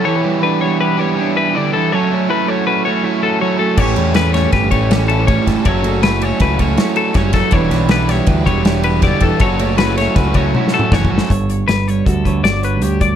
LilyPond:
<<
  \new Staff \with { instrumentName = "Clean electric guitar" } { \time 5/4 \key fis \phrygian \tempo 4 = 160 cis''4 b'8 cis''8 b'8 cis''4 b'8 d''8 a'8 | cis''4 b'8 cis''8 b'8 cis''4 a'8 cis''8 a'8 | cis''4 b'8 cis''8 b'8 cis''4 a'8 cis''8 a'8 | cis''4 b'8 cis''8 b'8 cis''4 a'8 cis''8 a'8 |
cis''4 b'8 cis''8 b'8 cis''4 b'8 d''8 a'8 | cis''4 b'8 cis''8 b'8 cis''4 a'8 cis''8 a'8 | r4 b'8 cis''8 a'4 d''8 b'8 g'8 d''8 | }
  \new Staff \with { instrumentName = "Clean electric guitar" } { \time 5/4 \key fis \phrygian << { a'16 b'8. d'4 g'4 d'8 e'16 g'4~ g'16 | a'4 e'4 fis'4 e'8 fis'8 a'4 | <a cis' g' cis''>4 cis'4 g'4 cis'8 e'16 g'16 cis''4 | a'4 e'4 fis'4 e'8 fis'4. |
<g d' g' b'>4 d'4 g'4 d'8 g'4. | a'4 e'4 fis'4 e'8 fis'4. | cis''4 b'4 fis'8 cis''8 fis'8 cis''8 cis''4 | } \\ { e8 g4 g4 g4. d8 e8 | fis8 a4 a4 a4. fis8 a8 | a,8 a4 a4 a4. a,8 a8 | fis8 a4 a4 a4. g8 fis8 |
e8 g4 g4 g4. d8 e8 | fis8 a4 a4 a4. e8 fis8 | g,4. g4 d4. g,4 | } >> }
  \new Staff \with { instrumentName = "Overdriven electric guitar" } { \time 5/4 \key fis \phrygian <e b e' g'>8 <b e' g'>8 <e b e' g'>8 <b e' g'>4 <b e' g'>8 <e b e' g'>4 <e b e' g'>8 <b e' g'>8 | <fis a cis' fis'>8 <a cis' fis'>8 <fis a cis' fis'>8 <a cis' fis'>4 <a cis' fis'>8 <fis a cis' fis'>4 <fis a cis' fis'>8 <a cis' fis'>8 | <a, e g cis' g'>8 <g cis' g'>8 <e g cis' g'>8 <g cis' g'>4 <g cis' g'>8 <a, e g cis' g'>4 <a, e g cis' g'>8 <g cis' g'>8 | <fis a cis' fis'>8 <a cis' fis'>8 <fis a cis' fis'>8 <a cis' fis'>4 <a cis' fis'>8 <fis a cis' fis'>4 <fis a cis' fis'>8 <a cis' fis'>8 |
<e b e' g'>8 <b e' g'>8 <e b e' g'>8 <b e' g'>4 <b e' g'>8 <e b e' g'>4 <e b e' g'>8 <b e' g'>8 | <fis a cis' fis'>8 <a cis' fis'>8 <fis a cis' fis'>8 <a cis' fis'>4 <a cis' fis'>8 <fis a cis' fis'>4 <fis a cis' fis'>8 <a cis' fis'>8 | r1 r4 | }
  \new Staff \with { instrumentName = "Picked electric bass" } { \clef bass \time 5/4 \key fis \phrygian r1 r4 | r1 r4 | a,,8 e,4. g,,8 a,,2 g,,16 r16 | fis,,2 cis,8 cis,8 r4 fis,,8 fis,,16 r16 |
e,,8 b,,4. d,8 e,,2 e,,16 r16 | fis,,2 cis,8 cis,8 r4 fis,,8 fis,,16 r16 | g,,4 g,,4 d,4 g,,4 d,4 | }
  \new DrumStaff \with { instrumentName = "Drums" } \drummode { \time 5/4 r4 r4 r4 r4 r4 | r4 r4 r4 r4 r4 | <cymc bd>8 cymr8 <cymr sn>8 <cymr sn>8 <bd cymr sn>8 <bd cymr>8 <cymr sn>8 cymr8 <bd cymr>8 <bd cymr sn>8 | <bd cymr>8 cymr8 <cymr sn>8 cymr8 <bd cymr sn>8 <bd cymr>8 <cymr sn>8 cymr8 <bd cymr sn>8 <bd cymr sn>8 |
<bd cymr>8 <cymr sn>8 <cymr sn>8 <cymr sn>8 <bd cymr>8 <bd cymr>8 <cymr sn>8 cymr8 <bd cymr sn>8 <bd cymr>8 | <bd cymr>8 cymr8 <cymr sn>8 <cymr sn>8 <bd cymr sn>8 <bd cymr>8 \tuplet 3/2 { tommh8 sn8 toml8 <bd sn>8 bd8 sn8 } | <hh bd>8 hh8 <hh sn>8 hh8 <hh bd>8 <hh bd>8 <hh sn>8 hh8 hh8 <hh bd>8 | }
>>